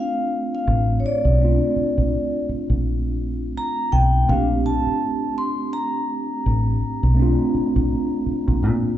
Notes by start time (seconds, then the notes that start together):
Already playing: A3 C4 D4 F4
0.00 F5
0.55 F5
0.67 A1
1.00 C#5
1.06 D5
1.25 B1
1.36 A3 C4
1.41 D4 F4
1.76 muted fingered electric bass stroke
1.98 A#1
2.49 muted fingered electric bass stroke
2.70 A#1
3.57 A#5
3.92 B1 G5
4.25 A3 C4
4.29 A#1 D4 G4 F5
4.66 A5
4.87 muted fingered electric bass stroke
5.38 C6
5.73 A#5
6.46 A1
7.03 B1
7.14 A3 C4
7.19 D4 F4
7.54 muted fingered electric bass stroke
7.76 A#1
8.26 muted fingered electric bass stroke
8.48 A#1
8.63 A#2